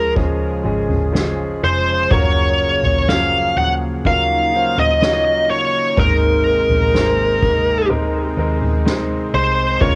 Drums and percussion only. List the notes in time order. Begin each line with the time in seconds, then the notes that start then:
0.16 kick, floor tom
0.89 floor tom
1.15 snare
2.11 kick, floor tom
2.84 floor tom
3.09 snare
3.56 floor tom
4.05 kick, floor tom
4.77 floor tom
5.02 snare
5.97 kick, floor tom
6.69 floor tom
6.95 snare
7.42 kick, floor tom
7.91 floor tom
8.62 floor tom
8.86 snare
9.81 kick, floor tom